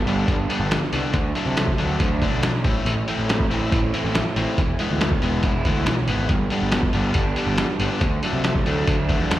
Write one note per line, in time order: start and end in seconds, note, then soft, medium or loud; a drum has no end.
0.00 0.50 G2 medium
0.00 0.91 B3 medium
0.06 0.23 G1 medium
0.06 0.35 D3 medium
0.06 0.48 G3 medium
0.06 0.36 G3 medium
0.06 0.35 B3 medium
0.06 0.35 D4 medium
0.06 closed hi-hat medium
0.27 0.45 G1 medium
0.27 1.14 D4 medium
0.27 kick medium
0.27 closed hi-hat medium
0.49 0.79 D3 medium
0.49 1.14 G3 medium
0.49 0.78 G3 medium
0.49 0.78 B3 medium
0.49 0.78 D4 medium
0.49 closed hi-hat medium
0.60 0.77 G1 medium
0.70 1.13 D3 medium
0.70 snare loud
0.70 closed hi-hat medium
0.92 1.01 C2 medium
0.92 1.15 D3 medium
0.92 1.15 G3 medium
0.92 1.14 B3 medium
0.92 1.15 B3 medium
0.92 1.14 D4 medium
0.92 closed hi-hat medium
1.14 1.31 D2 loud
1.14 2.22 D3 medium
1.14 kick medium
1.14 closed hi-hat medium
1.35 1.65 D3 medium
1.35 1.77 F#3 medium
1.35 1.64 F#3 medium
1.35 1.64 A3 medium
1.35 1.64 D4 medium
1.35 closed hi-hat medium
1.46 1.71 C3 medium
1.57 2.65 A3 medium
1.57 snare loud
1.57 closed hi-hat medium
1.68 kick medium
1.78 1.95 D2 medium
1.78 2.08 D3 medium
1.78 2.21 F#3 medium
1.78 2.07 F#3 medium
1.78 2.07 A3 medium
1.78 2.07 D4 medium
1.78 closed hi-hat medium
2.00 2.25 D2 medium
2.00 2.65 D4 medium
2.00 kick loud
2.00 closed hi-hat medium
2.22 2.51 D3 medium
2.22 2.65 F#3 medium
2.22 2.50 F#3 medium
2.22 2.50 A3 medium
2.22 2.50 D4 medium
2.22 kick medium
2.22 closed hi-hat medium
2.32 2.64 B1 medium
2.43 2.65 D3 medium
2.43 snare loud
2.43 closed hi-hat medium
2.64 2.73 A1 medium
2.64 2.86 A2 medium
2.64 2.94 E3 medium
2.64 2.93 A3 medium
2.64 2.93 C4 medium
2.64 2.93 E4 medium
2.64 kick medium
2.64 closed hi-hat medium
2.85 3.02 A1 medium
2.85 3.94 A2 medium
2.85 closed hi-hat medium
3.08 3.36 E3 medium
3.08 3.51 A3 medium
3.08 3.36 A3 medium
3.08 3.36 C4 medium
3.08 3.36 E4 medium
3.08 closed hi-hat medium
3.18 3.43 A1 medium
3.29 4.37 C4 medium
3.29 snare loud
3.29 closed hi-hat medium
3.40 kick medium
3.50 3.67 A1 medium
3.50 3.79 E3 medium
3.50 3.79 A3 medium
3.50 3.93 A3 medium
3.50 3.79 C4 medium
3.50 3.79 E4 medium
3.50 closed hi-hat medium
3.72 3.89 A1 medium
3.72 4.59 E4 medium
3.72 kick loud
3.72 closed hi-hat medium
3.94 4.22 E3 medium
3.94 4.59 A3 medium
3.94 4.22 A3 medium
3.94 4.22 C4 medium
3.94 4.22 E4 medium
3.94 closed hi-hat medium
4.04 4.21 A1 medium
4.15 4.58 E3 medium
4.15 snare loud
4.15 closed hi-hat medium
4.36 4.45 A1 medium
4.36 4.59 E3 medium
4.36 4.59 A3 medium
4.36 4.58 C4 medium
4.36 4.59 C4 medium
4.36 4.58 E4 medium
4.36 closed hi-hat medium
4.58 4.74 E1 medium
4.58 5.66 E3 medium
4.58 kick loud
4.58 closed hi-hat medium
4.79 5.08 E3 medium
4.79 5.23 G#3 medium
4.79 5.08 G#3 medium
4.79 5.08 B3 medium
4.79 5.08 E4 medium
4.79 closed hi-hat medium
4.90 5.15 D2 medium
5.01 6.08 B3 medium
5.01 snare medium
5.01 closed hi-hat medium
5.12 kick medium
5.22 5.39 E1 medium
5.22 5.51 E3 medium
5.22 5.51 G#3 medium
5.22 5.66 G#3 medium
5.22 5.51 B3 medium
5.22 5.51 E4 medium
5.22 closed hi-hat medium
5.43 5.60 E1 medium
5.43 6.31 E4 medium
5.43 kick medium
5.43 closed hi-hat medium
5.65 5.85 D2 medium
5.65 5.95 E3 medium
5.65 5.94 G#3 medium
5.65 6.31 G#3 medium
5.65 5.94 B3 medium
5.65 5.94 E4 medium
5.65 kick medium
5.65 closed hi-hat medium
5.86 6.06 B1 medium
5.86 6.30 E3 medium
5.86 snare medium
5.86 closed hi-hat medium
6.08 6.28 G#1 medium
6.08 6.31 E3 medium
6.08 6.31 G#3 medium
6.08 6.30 B3 medium
6.08 6.31 B3 medium
6.08 6.30 E4 medium
6.08 closed hi-hat soft
6.29 6.46 G1 medium
6.29 7.38 G2 medium
6.29 kick loud
6.29 closed hi-hat medium
6.50 6.80 D3 medium
6.50 6.80 G3 medium
6.50 6.94 G3 medium
6.50 6.80 B3 medium
6.50 6.80 D4 medium
6.50 closed hi-hat medium
6.61 6.87 G1 medium
6.72 7.78 B3 medium
6.72 snare loud
6.72 closed hi-hat medium
6.83 kick medium
6.93 7.10 G1 medium
6.93 7.23 D3 medium
6.93 7.35 G3 medium
6.93 7.23 G3 medium
6.93 7.23 B3 medium
6.93 7.23 D4 medium
6.93 closed hi-hat medium
7.14 7.32 G1 medium
7.14 8.01 D4 medium
7.14 kick loud
7.14 closed hi-hat medium
7.36 7.66 D3 medium
7.36 8.01 G3 medium
7.36 7.66 G3 medium
7.36 7.66 B3 medium
7.36 7.65 D4 medium
7.36 closed hi-hat medium
7.47 7.64 G1 medium
7.58 8.00 D3 medium
7.58 snare medium
7.58 closed hi-hat medium
7.80 7.88 G1 medium
7.80 8.03 D3 medium
7.80 8.03 G3 medium
7.80 8.02 B3 medium
7.80 8.03 B3 medium
7.80 8.02 D4 medium
7.80 closed hi-hat medium
8.01 8.18 D2 medium
8.01 9.09 D3 medium
8.01 kick loud
8.01 closed hi-hat medium
8.22 8.53 D3 medium
8.22 8.65 F#3 medium
8.22 8.52 F#3 medium
8.22 8.52 A3 medium
8.22 8.52 D4 medium
8.22 closed hi-hat medium
8.33 8.58 C3 medium
8.44 9.39 A3 medium
8.44 snare loud
8.44 closed hi-hat medium
8.55 kick medium
8.66 8.82 D2 medium
8.66 8.95 D3 medium
8.66 9.09 F#3 medium
8.66 8.95 F#3 medium
8.66 8.95 A3 medium
8.66 8.95 D4 medium
8.66 closed hi-hat medium
8.87 9.12 D2 medium
8.87 9.39 D4 medium
8.87 kick loud
8.87 closed hi-hat medium
9.09 9.38 D3 medium
9.09 9.37 F#3 medium
9.09 9.39 F#3 medium
9.09 9.37 A3 medium
9.09 9.37 D4 medium
9.09 kick medium
9.09 closed hi-hat medium
9.20 9.39 E2 medium
9.30 9.39 D3 medium
9.30 snare loud
9.30 closed hi-hat medium